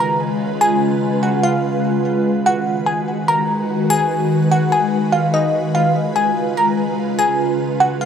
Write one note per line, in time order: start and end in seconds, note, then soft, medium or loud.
0.00 2.22 C#3 medium
0.00 2.22 G#3 medium
0.00 2.22 F4 medium
0.00 2.22 B4 medium
0.00 0.19 A#5 medium
0.61 1.19 G#5 loud
1.23 1.42 F#5 medium
1.43 1.82 F5 medium
2.25 5.51 D#3 medium
2.25 8.05 G#3 medium
2.25 5.51 F#4 medium
2.25 8.05 B4 medium
2.46 2.85 F#5 medium
2.86 3.25 G#5 medium
3.28 3.48 A#5 medium
3.90 4.48 G#5 loud
4.51 4.71 F#5 medium
4.72 5.11 G#5 medium
5.12 5.32 F5 medium
5.34 5.53 D#5 medium
5.54 8.05 C#3 medium
5.54 8.05 F4 medium
5.75 6.13 F5 medium
6.16 6.54 G#5 medium
6.57 6.77 A#5 medium
7.19 7.77 G#5 medium
7.80 8.00 F#5 medium
8.01 8.05 F5 medium